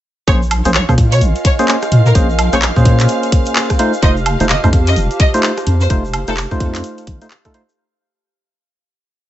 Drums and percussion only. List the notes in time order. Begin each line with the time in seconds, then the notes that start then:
0.28 kick, closed hi-hat, shaker
0.42 shaker
0.51 open hi-hat, high woodblock
0.65 closed hi-hat, shaker
0.74 cross-stick, clap, shaker
0.89 kick, high woodblock, shaker
0.98 kick, open hi-hat
1.12 closed hi-hat, shaker
1.21 closed hi-hat, shaker
1.35 closed hi-hat, shaker
1.45 kick, open hi-hat
1.59 closed hi-hat, shaker
1.68 clap, shaker
1.82 cross-stick, closed hi-hat, shaker
1.92 open hi-hat
2.06 shaker
2.15 kick, closed hi-hat, shaker
2.30 shaker
2.39 open hi-hat, high woodblock
2.53 closed hi-hat, shaker
2.62 cross-stick, clap, shaker
2.76 kick, shaker
2.85 kick, open hi-hat
3.00 clap, closed hi-hat, shaker
3.08 closed hi-hat, shaker
3.23 closed hi-hat, shaker
3.32 kick, open hi-hat
3.46 closed hi-hat, shaker
3.56 clap, shaker
3.70 kick, cross-stick, closed hi-hat, shaker
3.79 open hi-hat
3.93 shaker
4.03 kick, closed hi-hat, shaker
4.17 shaker
4.26 open hi-hat, high woodblock
4.40 closed hi-hat, shaker
4.49 cross-stick, clap, shaker
4.64 kick, high woodblock, shaker
4.73 kick, open hi-hat
4.87 closed hi-hat, shaker
4.96 closed hi-hat, shaker
5.11 closed hi-hat, shaker
5.20 kick, open hi-hat
5.34 closed hi-hat, shaker
5.43 clap, shaker
5.57 cross-stick, closed hi-hat, shaker
5.67 open hi-hat
5.81 shaker
5.90 kick, closed hi-hat, shaker
6.05 shaker
6.13 open hi-hat, high woodblock
6.27 closed hi-hat, shaker
6.37 cross-stick, clap, shaker
6.51 kick, shaker
6.60 kick, open hi-hat
6.75 clap, closed hi-hat, shaker
6.84 closed hi-hat, shaker
6.98 closed hi-hat, shaker
7.07 kick, open hi-hat
7.22 closed hi-hat, shaker
7.31 clap, shaker
7.45 kick, cross-stick, closed hi-hat, shaker
7.54 open hi-hat
7.69 shaker